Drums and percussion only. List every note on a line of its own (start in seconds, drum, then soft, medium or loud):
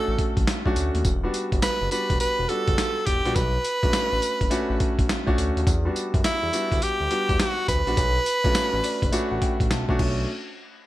0.18 kick medium
0.18 closed hi-hat medium
0.37 kick loud
0.37 closed hi-hat medium
0.47 snare loud
0.47 closed hi-hat medium
0.47 tambourine medium
0.66 kick medium
0.76 closed hi-hat medium
0.76 tambourine medium
0.95 closed hi-hat soft
1.05 kick loud
1.05 closed hi-hat medium
1.05 tambourine medium
1.34 closed hi-hat medium
1.34 tambourine medium
1.52 kick loud
1.52 closed hi-hat medium
1.62 snare loud
1.62 closed hi-hat medium
1.62 tambourine loud
1.91 closed hi-hat medium
1.91 tambourine medium
2.10 kick loud
2.10 closed hi-hat medium
2.20 closed hi-hat medium
2.20 tambourine medium
2.49 closed hi-hat medium
2.68 kick loud
2.68 closed hi-hat medium
2.78 snare loud
2.78 closed hi-hat medium
2.78 tambourine medium
3.07 kick medium
3.07 closed hi-hat medium
3.07 tambourine medium
3.25 closed hi-hat soft
3.36 kick loud
3.36 closed hi-hat medium
3.36 tambourine medium
3.64 closed hi-hat medium
3.64 tambourine medium
3.83 kick loud
3.83 closed hi-hat soft
3.93 snare loud
3.93 closed hi-hat medium
3.93 tambourine loud
4.22 closed hi-hat medium
4.22 tambourine medium
4.41 kick medium
4.41 closed hi-hat medium
4.51 closed hi-hat medium
4.51 tambourine medium
4.80 kick medium
4.80 closed hi-hat medium
4.99 kick loud
4.99 closed hi-hat medium
5.09 snare loud
5.09 closed hi-hat medium
5.09 tambourine medium
5.27 kick medium
5.38 closed hi-hat medium
5.38 tambourine medium
5.57 closed hi-hat soft
5.67 kick loud
5.67 closed hi-hat medium
5.67 tambourine medium
5.96 closed hi-hat medium
5.96 tambourine medium
6.14 kick loud
6.14 closed hi-hat medium
6.24 snare loud
6.24 closed hi-hat medium
6.24 tambourine loud
6.53 closed hi-hat medium
6.53 tambourine medium
6.72 kick medium
6.72 closed hi-hat medium
6.82 closed hi-hat medium
6.82 tambourine medium
7.11 closed hi-hat medium
7.29 kick loud
7.29 closed hi-hat medium
7.40 snare loud
7.40 closed hi-hat medium
7.40 tambourine medium
7.68 kick medium
7.68 closed hi-hat medium
7.68 tambourine medium
7.87 closed hi-hat soft
7.97 kick loud
7.97 closed hi-hat medium
7.97 tambourine medium
8.26 closed hi-hat medium
8.26 tambourine medium
8.45 kick loud
8.45 closed hi-hat medium
8.55 snare loud
8.55 closed hi-hat medium
8.55 tambourine loud
8.84 open hi-hat medium
8.84 tambourine medium
9.02 kick loud
9.02 closed hi-hat medium
9.13 closed hi-hat medium
9.13 tambourine medium
9.42 kick medium
9.42 closed hi-hat medium
9.60 kick loud
9.60 closed hi-hat medium
9.71 snare loud
9.71 closed hi-hat medium
9.71 tambourine medium
9.89 kick medium
9.99 kick loud
9.99 crash medium